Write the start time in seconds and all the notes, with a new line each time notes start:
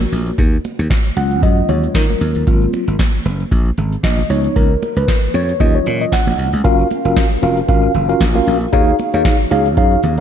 Already playing: F#4
0.01 closed hi-hat, high conga
0.12 A#1, open hi-hat
0.26 closed hi-hat
0.38 D#2, kick, closed hi-hat, muted conga
0.53 closed hi-hat
0.64 closed hi-hat, muted conga
0.79 D#2, closed hi-hat
0.90 kick, snare, closed hi-hat, high conga
1.05 closed hi-hat
1.16 C#2 F#3 G#3 C#4 F4 F#5, closed hi-hat, muted conga
1.31 closed hi-hat
1.43 F#2 D#5, kick, closed hi-hat, muted conga, low conga
1.57 closed hi-hat
1.69 D#2 C#5, closed hi-hat, low conga
1.84 closed hi-hat
1.95 D#3 A#4, kick, snare, closed hi-hat, high conga
2.10 closed hi-hat, high conga
2.21 D#2, open hi-hat
2.35 D#2, closed hi-hat
2.47 G#1 F#3 A#3 C4 F4, kick, closed hi-hat, muted conga
2.62 closed hi-hat
2.73 closed hi-hat, muted conga
2.88 G#1, closed hi-hat
2.99 kick, snare, closed hi-hat, high conga
3.14 closed hi-hat
3.25 F#1, closed hi-hat, muted conga
3.40 closed hi-hat
3.51 A#1, kick, closed hi-hat, muted conga
3.66 closed hi-hat
3.78 G#1, closed hi-hat, low conga
3.93 closed hi-hat
4.03 A#1 D#5, kick, snare, closed hi-hat, high conga
4.19 closed hi-hat, high conga
4.29 C#2 F3 B3 D#4 C#5, open hi-hat
4.44 closed hi-hat
4.56 C#2 A#4, kick, closed hi-hat, muted conga
4.82 closed hi-hat, muted conga
4.96 C#2 B4, closed hi-hat
5.08 kick, snare, closed hi-hat, high conga
5.23 closed hi-hat
5.34 F2 C#5, closed hi-hat, muted conga
5.49 closed hi-hat
5.60 D#2 F#3 C#4 F4 D#5, kick, closed hi-hat, low conga
5.74 C#5, closed hi-hat
5.86 A#2, closed hi-hat, low conga
6.01 D#5, closed hi-hat
6.12 F#5, kick, snare, closed hi-hat, high conga
6.27 A#1, closed hi-hat, high conga
6.38 C2, open hi-hat
6.53 C#2, closed hi-hat, high conga
6.64 F#1 C#4 F4 F#4 A#4 F5, kick, closed hi-hat, muted conga
6.91 closed hi-hat, muted conga
7.05 F#1 C#4 F4 F#4 A#4 F5, closed hi-hat
7.16 kick, snare, closed hi-hat, high conga
7.42 F1 C#4 F4 F#4 A#4 F5, closed hi-hat, muted conga
7.57 closed hi-hat
7.68 G#1 C#4 F4 F#4 A#4 F5, kick, closed hi-hat, low conga
7.83 closed hi-hat
7.94 F#1, closed hi-hat, low conga
8.09 C#4 F4 F#4 A#4 F5, closed hi-hat
8.21 A#1, kick, snare, closed hi-hat, high conga
8.35 C#4 F4 F#4 A#4 F5, high conga
8.47 A#1, open hi-hat
8.61 closed hi-hat
8.73 D#2 D#4 F#4 G#4 C#5 F5, kick, closed hi-hat, muted conga
8.99 closed hi-hat, muted conga
9.13 D#2 D#4 F#4 G#4 C#5 F5, closed hi-hat
9.25 kick, snare, closed hi-hat, high conga
9.51 C#2 D#4 F#4 G#4 C#5 F5, closed hi-hat, muted conga
9.66 closed hi-hat
9.77 F#2 D#4 F#4 G#4 C#5 F5, kick, closed hi-hat
9.91 closed hi-hat
10.03 D#2, closed hi-hat, low conga